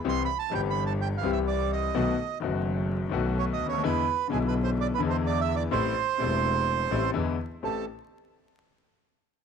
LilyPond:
<<
  \new Staff \with { instrumentName = "Bandoneon" } { \time 4/4 \key a \minor \tempo 4 = 127 \tuplet 3/2 { c'''8 b''8 a''8 g''8 b''8 a''8 g''8 f''8 e''8 } d''8 dis''8~ | dis''4 r2 \tuplet 3/2 { cis''8 dis''8 cis''8 } | b'4 \tuplet 3/2 { gis'8 b'8 c''8 d''8 b'8 c''8 d''8 e''8 d''8 } | c''2. r4 |
a'8 r2. r8 | }
  \new Staff \with { instrumentName = "Grand piano" } { \clef bass \time 4/4 \key a \minor << { <c, c e g c' g'>8 r8 <g,, g, e g c' g'>4. <c, c e g c' g'>4. | <b,, b, dis a b fis'>8 r8 <fis,, fis, dis a b fis'>4. <b,, b, dis a b fis'>4. | <e, d e gis b e'>8 r8 <b,, b, d gis b e'>4. <e, d e gis b e'>4. | <a,, a, c g a e'>8 r8 <e,, e, c g a e'>4. <a,, a, c g a e'>8 <e, d e gis b e'>8 r8 |
<a,, a c' g'>8 r2. r8 | } \\ { r1 | r2. r8 r32 cis,32 d,32 dis,32 | r1 | r1 |
r1 | } >> }
  \new Staff \with { instrumentName = "Double bass" } { \clef bass \time 4/4 \key a \minor c,8 r8 g,,4. c,4. | b,,8 r8 fis,,4. b,,4 d,8 | e,8 r8 b,,4. e,4. | a,,8 r8 e,,4. a,,8 e,8 r8 |
a,,8 r2. r8 | }
>>